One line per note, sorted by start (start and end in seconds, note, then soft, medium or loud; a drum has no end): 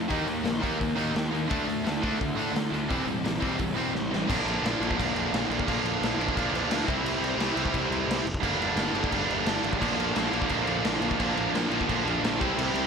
0.00 0.10 F2 medium
0.08 0.26 D#2 medium
0.08 0.25 D#3 medium
0.08 1.31 D#3 medium
0.08 0.26 A#3 medium
0.08 1.32 A#3 medium
0.08 0.26 D#4 loud
0.08 1.30 D#4 medium
0.08 kick loud
0.08 open hi-hat medium
0.26 0.43 D#2 medium
0.26 0.42 D#3 medium
0.26 0.42 A#3 medium
0.26 open hi-hat medium
0.43 0.60 A#1 medium
0.43 0.58 D#3 medium
0.43 0.59 A#3 medium
0.43 snare loud
0.43 open hi-hat medium
0.59 0.77 D#3 medium
0.59 0.77 A#3 medium
0.59 0.78 D#4 medium
0.59 open hi-hat medium
0.63 0.79 D#2 medium
0.63 kick medium
0.78 0.96 D#2 medium
0.78 0.95 D#3 medium
0.78 0.95 A#3 medium
0.78 kick loud
0.78 open hi-hat medium
0.96 1.13 D#2 medium
0.96 1.12 D#3 medium
0.96 1.13 A#3 medium
0.96 1.13 D#4 medium
0.96 open hi-hat medium
1.13 1.46 D#2 medium
1.13 1.30 D#3 medium
1.13 1.30 A#3 medium
1.13 snare loud
1.13 open hi-hat medium
1.31 1.48 D#3 medium
1.31 1.48 A#3 medium
1.31 1.49 A#3 medium
1.31 1.48 D#4 medium
1.31 open hi-hat soft
1.35 1.48 D#3 medium
1.48 1.66 D2 medium
1.48 2.70 D3 medium
1.48 1.65 D3 medium
1.48 1.66 A3 medium
1.48 2.71 A3 loud
1.48 1.67 D4 medium
1.48 2.70 D4 loud
1.48 kick loud
1.48 open hi-hat medium
1.66 1.82 D2 medium
1.66 1.82 D3 medium
1.66 1.83 A3 medium
1.66 open hi-hat medium
1.84 2.15 D2 medium
1.84 2.00 D3 medium
1.84 2.00 A3 medium
1.84 snare loud
1.84 open hi-hat medium
2.02 2.17 D3 medium
2.02 2.18 A3 loud
2.02 2.19 D4 loud
2.02 kick medium
2.02 open hi-hat medium
2.18 2.34 D2 loud
2.18 2.35 D3 medium
2.18 2.35 A3 medium
2.18 kick loud
2.18 open hi-hat medium
2.35 2.51 A2 medium
2.35 2.53 D3 medium
2.35 2.53 A3 loud
2.35 2.54 D4 loud
2.35 open hi-hat medium
2.53 2.69 D3 medium
2.53 2.71 D3 medium
2.53 2.71 A3 medium
2.53 snare loud
2.53 open hi-hat medium
2.71 2.87 D2 medium
2.71 2.88 D3 medium
2.71 2.89 A3 medium
2.71 2.88 A3 medium
2.71 2.88 D4 medium
2.71 open hi-hat soft
2.89 3.05 E1 medium
2.89 4.10 C3 medium
2.89 3.04 E3 medium
2.89 3.05 G3 medium
2.89 4.10 G3 loud
2.89 3.06 C4 medium
2.89 4.09 C4 loud
2.89 kick loud
2.89 open hi-hat medium
3.06 3.22 E1 medium
3.06 3.22 E3 medium
3.06 3.22 G3 medium
3.06 open hi-hat medium
3.23 3.39 A#1 medium
3.23 3.39 E3 medium
3.23 3.39 G3 medium
3.23 snare medium
3.23 open hi-hat medium
3.40 3.57 E1 medium
3.40 3.57 E3 medium
3.40 3.57 G3 medium
3.40 3.58 C4 loud
3.40 kick medium
3.40 open hi-hat medium
3.58 3.74 E1 medium
3.58 3.74 E3 medium
3.58 3.74 G3 medium
3.58 kick medium
3.58 open hi-hat medium
3.75 3.91 E1 medium
3.75 3.91 E3 medium
3.75 3.91 G3 medium
3.75 3.93 C4 loud
3.75 open hi-hat medium
3.92 4.23 A1 medium
3.92 4.08 E3 medium
3.92 4.08 G3 medium
3.92 snare medium
4.10 4.28 C3 medium
4.10 4.26 E3 medium
4.10 4.26 G3 medium
4.10 4.28 G3 medium
4.10 4.27 C4 medium
4.10 snare medium
4.27 4.41 A#1 medium
4.27 4.82 A#2 medium
4.27 4.79 D3 medium
4.27 4.81 F3 loud
4.27 4.80 A#3 loud
4.27 4.79 D4 loud
4.27 kick loud
4.27 crash loud
4.27 crash medium
4.45 4.57 A#1 loud
4.45 crash medium
4.61 4.73 A#1 loud
4.65 snare loud
4.65 crash medium
4.80 4.92 A#1 medium
4.80 5.65 A#2 medium
4.80 5.66 D3 medium
4.80 5.66 F3 medium
4.80 5.66 A#3 medium
4.80 5.65 D4 medium
4.80 crash medium
4.91 kick medium
4.97 5.10 A#1 loud
4.97 5.63 A#2 medium
4.97 5.65 D3 medium
4.97 5.66 F3 medium
4.97 5.66 A#3 medium
4.97 5.66 D4 medium
4.97 kick medium
4.97 crash medium
5.16 5.27 A#1 medium
5.16 crash medium
5.32 5.44 A#1 medium
5.32 snare loud
5.32 crash medium
5.49 5.61 A#1 medium
5.49 crash medium
5.60 kick medium
5.67 5.79 A#1 loud
5.67 6.17 A#2 loud
5.67 6.17 D3 medium
5.67 6.18 F3 loud
5.67 6.18 A#3 loud
5.67 6.16 D4 loud
5.67 kick loud
5.67 crash medium
5.84 5.95 A#1 loud
5.84 crash medium
6.01 6.13 A#1 medium
6.01 snare loud
6.01 crash medium
6.17 6.29 A#1 medium
6.17 6.87 A#2 medium
6.17 6.85 D3 medium
6.17 6.86 F3 medium
6.17 6.86 A#3 medium
6.17 6.86 D4 medium
6.17 crash medium
6.28 kick medium
6.34 6.48 A#1 medium
6.34 6.85 A#2 medium
6.34 6.86 D3 medium
6.34 6.86 F3 medium
6.34 6.87 A#3 medium
6.34 6.87 D4 loud
6.34 kick loud
6.38 crash medium
6.52 6.64 A#1 medium
6.52 crash medium
6.69 6.81 D2 medium
6.69 snare loud
6.69 crash loud
6.86 6.99 C2 medium
6.86 7.36 C3 medium
6.86 7.39 G3 loud
6.86 7.38 C4 loud
6.86 7.39 E4 loud
6.86 kick loud
6.86 crash medium
7.03 7.15 C2 loud
7.03 crash medium
7.20 7.32 C2 loud
7.20 crash medium
7.38 7.50 C2 loud
7.38 8.24 C3 medium
7.38 8.24 G3 medium
7.38 8.24 C4 medium
7.38 8.25 E4 medium
7.38 snare loud
7.38 crash medium
7.54 7.68 C2 medium
7.54 8.25 C3 medium
7.54 8.24 G3 medium
7.54 8.24 C4 medium
7.54 8.23 E4 medium
7.54 crash medium
7.66 kick medium
7.74 7.86 C2 loud
7.74 kick loud
7.74 crash medium
7.91 8.03 C2 loud
7.91 crash medium
8.08 8.19 C2 loud
8.08 snare loud
8.08 crash loud
8.25 8.37 F1 loud
8.25 crash medium
8.34 kick medium
8.42 8.54 G1 medium
8.42 8.93 G2 medium
8.42 8.94 D3 medium
8.42 8.94 G3 loud
8.42 8.94 A#3 loud
8.42 8.94 D4 loud
8.42 kick loud
8.42 crash medium
8.60 8.72 G1 medium
8.60 crash medium
8.76 8.88 G1 loud
8.76 snare loud
8.76 crash medium
8.94 9.05 G1 medium
8.94 9.79 G2 medium
8.94 9.79 D3 medium
8.94 9.80 G3 medium
8.94 9.81 A#3 medium
8.94 9.81 D4 medium
8.94 crash medium
9.04 kick medium
9.11 9.24 G1 loud
9.11 9.78 G2 medium
9.11 9.79 D3 medium
9.11 9.80 G3 medium
9.11 9.80 A#3 medium
9.11 9.81 D4 loud
9.11 kick medium
9.11 crash medium
9.29 9.40 G1 medium
9.29 crash medium
9.46 9.57 G1 medium
9.46 snare loud
9.46 crash loud
9.64 9.75 A1 medium
9.64 crash medium
9.73 kick medium
9.79 9.93 A#1 loud
9.79 10.33 A#2 medium
9.79 9.97 A#2 loud
9.79 10.31 D3 medium
9.79 10.32 F3 loud
9.79 9.98 F3 loud
9.79 10.32 A#3 loud
9.79 9.98 A#3 loud
9.79 10.30 D4 loud
9.79 kick loud
9.79 crash loud
9.98 10.10 A#1 medium
9.98 10.14 A#2 medium
9.98 10.14 F3 medium
9.98 10.15 A#3 medium
9.98 crash medium
10.14 10.27 A#1 loud
10.14 10.30 A#2 loud
10.14 10.30 F3 medium
10.14 10.31 A#3 loud
10.14 snare loud
10.14 crash loud
10.31 10.44 A#1 medium
10.31 10.47 A#2 medium
10.31 11.17 A#2 medium
10.31 11.18 D3 medium
10.31 10.49 F3 loud
10.31 11.18 F3 medium
10.31 11.18 A#3 medium
10.31 10.49 A#3 loud
10.31 11.17 D4 medium
10.31 crash medium
10.42 kick medium
10.47 10.62 A#1 loud
10.47 11.16 A#2 medium
10.47 10.65 A#2 loud
10.47 11.17 D3 medium
10.47 11.18 F3 medium
10.47 10.65 F3 loud
10.47 11.17 A#3 medium
10.47 10.66 A#3 loud
10.47 11.18 D4 medium
10.47 kick loud
10.47 crash medium
10.66 10.79 A#1 medium
10.66 10.82 A#2 medium
10.66 10.83 F3 medium
10.66 10.83 A#3 medium
10.66 crash medium
10.83 10.96 A#1 medium
10.83 10.99 A#2 medium
10.83 11.00 F3 medium
10.83 11.01 A#3 loud
10.83 snare loud
10.83 crash medium
11.00 11.13 A#1 medium
11.00 11.17 A#2 medium
11.00 11.18 F3 medium
11.00 11.18 A#3 medium
11.00 crash medium
11.11 kick medium
11.18 11.31 A#1 loud
11.18 11.34 A#2 loud
11.18 11.70 A#2 loud
11.18 11.70 D3 loud
11.18 11.35 F3 loud
11.18 11.70 F3 loud
11.18 11.36 A#3 loud
11.18 11.70 A#3 loud
11.18 11.70 D4 loud
11.18 kick loud
11.18 crash medium
11.36 11.48 A#1 loud
11.36 11.52 A#2 medium
11.36 11.53 F3 medium
11.36 11.54 A#3 medium
11.36 crash medium
11.53 11.65 A#1 loud
11.53 11.69 A#2 loud
11.53 11.70 F3 medium
11.53 11.70 A#3 loud
11.53 snare loud
11.53 crash medium
11.69 11.81 A#1 medium
11.69 11.86 A#2 medium
11.69 12.40 A#2 medium
11.69 12.39 D3 medium
11.69 11.87 F3 loud
11.69 12.40 F3 medium
11.69 11.88 A#3 medium
11.69 12.39 A#3 medium
11.69 12.39 D4 medium
11.69 crash medium
11.81 kick medium
11.85 12.38 A#2 medium
11.85 12.03 A#2 loud
11.85 12.38 D3 medium
11.85 12.39 F3 medium
11.85 12.04 F3 loud
11.85 12.39 A#3 medium
11.85 12.05 A#3 loud
11.85 12.39 D4 loud
11.89 12.01 A#1 loud
11.89 kick loud
11.89 crash medium
12.05 12.17 A#1 medium
12.05 12.21 A#2 medium
12.05 12.22 F3 medium
12.05 12.23 A#3 loud
12.05 crash medium
12.22 12.42 A#1 loud
12.22 12.39 A#2 medium
12.22 12.39 F3 medium
12.22 12.40 A#3 loud
12.22 snare loud
12.22 crash medium
12.40 12.53 C2 medium
12.40 12.55 C3 loud
12.40 12.87 C3 loud
12.40 12.57 G3 medium
12.40 12.87 G3 loud
12.40 12.57 C4 loud
12.40 12.87 C4 loud
12.40 12.87 E4 loud
12.40 kick loud
12.40 crash medium
12.57 12.69 C2 loud
12.57 12.73 C3 loud
12.57 12.74 G3 loud
12.57 12.74 C4 loud
12.57 crash loud
12.74 12.86 C2 medium
12.74 12.87 C3 medium
12.74 12.87 G3 medium
12.74 12.87 C4 medium
12.74 crash medium